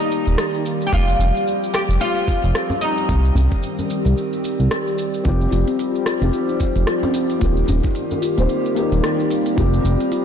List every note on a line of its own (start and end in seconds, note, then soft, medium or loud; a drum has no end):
0.00 0.90 D#3 medium
0.00 5.21 G3 medium
0.00 0.90 A#3 medium
0.00 0.61 D#4 medium
0.00 5.21 G4 medium
0.00 shaker soft
0.12 shaker medium
0.27 0.36 D#1 medium
0.27 shaker soft
0.38 cross-stick medium
0.38 shaker soft
0.54 shaker soft
0.66 shaker medium
0.81 shaker soft
0.87 0.93 G4 medium
0.92 1.15 F1 loud
0.92 3.06 F3 medium
0.92 7.37 C4 medium
0.92 1.70 F4 medium
0.92 kick loud
0.92 shaker soft
1.09 shaker soft
1.19 1.32 F1 medium
1.19 djembe tone soft
1.19 shaker medium
1.36 shaker soft
1.48 shaker soft
1.64 shaker soft
1.74 1.81 G4 medium
1.74 cross-stick medium
1.74 shaker medium
1.89 1.98 F1 medium
1.89 shaker soft
2.01 2.81 F4 loud
2.01 shaker soft
2.17 shaker soft
2.28 kick medium
2.28 shaker medium
2.44 2.53 F1 medium
2.44 shaker soft
2.55 cross-stick medium
2.55 shaker soft
2.70 djembe slap soft
2.70 djembe tone medium
2.70 shaker soft
2.81 3.32 D#4 medium
2.81 shaker medium
2.98 shaker soft
3.08 3.31 C2 loud
3.08 5.22 D#3 medium
3.08 kick loud
3.08 shaker soft
3.25 shaker soft
3.35 3.48 C2 medium
3.35 djembe bass medium
3.35 shaker medium
3.52 kick medium
3.52 shaker soft
3.63 shaker soft
3.79 djembe tone medium
3.79 shaker soft
3.90 shaker medium
4.05 4.14 C2 medium
4.05 djembe slap soft
4.05 shaker soft
4.17 shaker soft
4.33 shaker soft
4.44 shaker medium
4.60 4.69 C2 medium
4.60 shaker soft
4.71 cross-stick medium
4.71 shaker soft
4.87 shaker soft
4.98 shaker medium
5.14 shaker soft
5.24 5.47 F1 loud
5.24 7.39 F3 medium
5.24 7.39 G3 medium
5.24 6.17 C4 medium
5.24 6.18 F4 medium
5.24 7.39 G4 medium
5.24 6.19 G4 medium
5.24 kick loud
5.24 closed hi-hat soft
5.24 shaker soft
5.41 shaker soft
5.51 5.64 F1 medium
5.51 5.66 F4 loud
5.51 djembe tone soft
5.51 shaker medium
5.67 6.05 C4 medium
5.67 closed hi-hat soft
5.67 shaker soft
5.79 closed hi-hat medium
5.79 shaker soft
5.95 shaker soft
6.06 6.15 F4 medium
6.06 cross-stick medium
6.06 closed hi-hat soft
6.06 shaker medium
6.20 6.31 F1 medium
6.20 7.37 C4 medium
6.20 7.39 F4 medium
6.20 closed hi-hat soft
6.20 shaker soft
6.24 7.40 G4 medium
6.33 closed hi-hat soft
6.33 shaker soft
6.49 6.59 D#4 medium
6.49 shaker soft
6.60 kick loud
6.60 closed hi-hat soft
6.60 shaker medium
6.76 6.85 F1 medium
6.76 closed hi-hat soft
6.76 shaker soft
6.87 7.01 F4 medium
6.87 cross-stick medium
6.87 closed hi-hat soft
6.87 shaker soft
7.03 7.40 C4 medium
7.03 djembe slap soft
7.03 djembe tone medium
7.03 shaker soft
7.14 closed hi-hat soft
7.14 shaker medium
7.30 closed hi-hat soft
7.30 shaker soft
7.39 7.64 D#1 loud
7.39 9.55 D#3 medium
7.39 10.25 G3 medium
7.39 8.33 A#3 medium
7.39 9.55 A#3 medium
7.39 8.34 D#4 medium
7.39 7.50 F4 medium
7.39 9.55 G4 medium
7.39 kick loud
7.39 closed hi-hat soft
7.39 shaker soft
7.43 8.35 G4 medium
7.57 shaker soft
7.68 7.81 D#1 medium
7.68 djembe bass medium
7.68 shaker medium
7.83 7.95 D#4 medium
7.83 kick medium
7.83 closed hi-hat soft
7.83 shaker soft
7.95 closed hi-hat medium
7.95 shaker soft
8.11 djembe tone medium
8.11 shaker soft
8.22 8.36 F4 loud
8.22 closed hi-hat soft
8.22 shaker medium
8.37 8.47 D#1 medium
8.37 8.73 A#3 medium
8.37 8.75 C4 medium
8.37 8.74 D#4 medium
8.37 8.74 C5 medium
8.37 closed hi-hat soft
8.37 shaker soft
8.49 closed hi-hat soft
8.49 shaker soft
8.65 shaker soft
8.75 9.54 A#3 medium
8.75 9.55 D#4 medium
8.75 8.85 F4 medium
8.75 9.56 G4 medium
8.75 closed hi-hat soft
8.75 shaker medium
8.92 9.01 D#1 medium
8.92 closed hi-hat soft
8.92 shaker soft
9.04 cross-stick medium
9.04 closed hi-hat medium
9.04 shaker soft
9.19 9.30 D#4 medium
9.19 shaker soft
9.31 closed hi-hat soft
9.31 shaker medium
9.46 closed hi-hat soft
9.46 shaker soft
9.56 9.80 F1 medium
9.56 10.25 F3 medium
9.56 10.25 C4 medium
9.56 9.71 F4 loud
9.56 10.25 F4 medium
9.56 10.25 G4 medium
9.56 kick loud
9.56 closed hi-hat medium
9.56 shaker soft
9.73 10.10 C4 medium
9.73 shaker soft
9.84 9.97 F1 loud
9.84 djembe tone soft
9.84 shaker medium
10.01 closed hi-hat soft
10.01 shaker soft
10.11 10.20 F4 medium
10.11 closed hi-hat medium
10.11 shaker soft